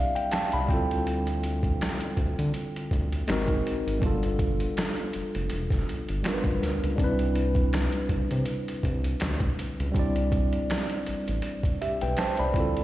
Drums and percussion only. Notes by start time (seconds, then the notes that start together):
0.16 closed hi-hat
0.32 finger snap, snare, closed hi-hat
0.52 closed hi-hat
0.69 kick, closed hi-hat
0.91 closed hi-hat
1.07 closed hi-hat
1.27 closed hi-hat
1.43 closed hi-hat
1.63 kick, closed hi-hat
1.81 finger snap, snare, closed hi-hat
2.00 closed hi-hat
2.17 kick, closed hi-hat
2.39 closed hi-hat
2.54 closed hi-hat
2.76 closed hi-hat
2.91 kick, closed hi-hat
3.12 closed hi-hat
3.28 finger snap, snare, closed hi-hat
3.48 kick, closed hi-hat
3.67 closed hi-hat
3.88 closed hi-hat
4.02 kick, closed hi-hat
4.23 closed hi-hat
4.39 kick, closed hi-hat
4.60 closed hi-hat
4.77 finger snap, snare, closed hi-hat
4.96 closed hi-hat
5.13 closed hi-hat
5.35 closed hi-hat
5.50 closed hi-hat
5.71 kick, snare, closed hi-hat
5.89 closed hi-hat
6.09 closed hi-hat
6.24 finger snap, snare, closed hi-hat
6.44 kick, closed hi-hat
6.63 snare, closed hi-hat
6.84 closed hi-hat
6.98 kick, closed hi-hat
7.19 closed hi-hat
7.35 closed hi-hat
7.55 kick, closed hi-hat
7.73 finger snap, snare, closed hi-hat
7.92 closed hi-hat
8.09 kick, closed hi-hat
8.31 closed hi-hat
8.45 closed hi-hat
8.68 closed hi-hat
8.83 kick, closed hi-hat
9.04 closed hi-hat
9.20 finger snap, snare, closed hi-hat
9.40 kick, closed hi-hat
9.59 closed hi-hat
9.80 closed hi-hat
9.95 kick, closed hi-hat
10.16 closed hi-hat
10.32 kick, closed hi-hat
10.53 closed hi-hat
10.70 finger snap, snare, closed hi-hat
10.90 closed hi-hat
11.06 closed hi-hat
11.28 closed hi-hat
11.42 closed hi-hat
11.63 kick, closed hi-hat
11.82 closed hi-hat
12.01 closed hi-hat
12.17 finger snap, snare, closed hi-hat
12.37 closed hi-hat
12.54 kick, closed hi-hat
12.77 closed hi-hat